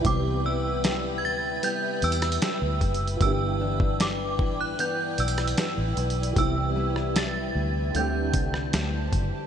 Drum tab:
HH |x-----------------------x-----------------------x-----------x--x--x--x--x-----------x---x---x---|x-----------------------x-----------------------x-----------x--x--x--x--x-----------x---x---x---|x-----------------------x-----------------------x-----------x-----------x-----------x-----------|
SD |------------------------o-----------------------------------------r-----o-----------------------|------------------------o-----------------------------------------r-----o-----------------------|------------------r-----o-----------------------------------------r-----o-----------------------|
BD |o-----------------------------------------------------------------------------------o-----------|o-----------------o-----------------o-----------------------------------------------------------|o-----------------------------------------------------------o-----------------------o-----------|